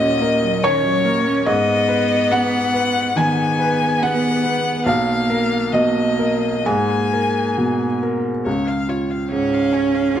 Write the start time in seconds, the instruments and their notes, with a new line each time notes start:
Already playing: felt piano D#2 A#2 C#4 A#4 D#5 F#5, violin D#5
0.00 cello C#4
0.20 cello A#3, felt piano A#4
0.42 cello F#3
0.63 cello D#3, felt piano C#4 C#5, violin C#5
0.84 cello F#3
1.04 cello A#3, felt piano A#4
1.27 cello C#4
1.46 felt piano G#2 D#5, cello B3, violin D#5
1.88 felt piano B4
2.31 felt piano B3 F#5, violin F#5
2.74 felt piano B4
3.16 felt piano D#3 G#5, cello B3, violin G#5
3.60 felt piano B4
4.02 felt piano B3 F#5, violin F#5
4.44 felt piano B4
4.86 felt piano B1 F5, cello A#3, violin F5
5.30 felt piano A#4
5.73 felt piano B2 D#5, cello A#3, violin D#5
6.19 felt piano A#4
6.66 felt piano G#2 G#5, cello A#3, violin G#5
7.13 felt piano A#4
7.57 felt piano B2
8.03 felt piano A#4
8.46 felt piano C#2, violin C#5
8.68 violin F5
8.89 felt piano F4, violin C#5
9.11 violin F5
9.31 felt piano G#2, cello C#4, violin C#5
9.54 violin F5
9.73 felt piano C#4, violin C#5
9.95 violin F5
10.15 felt piano G#2, cello F4, violin C#5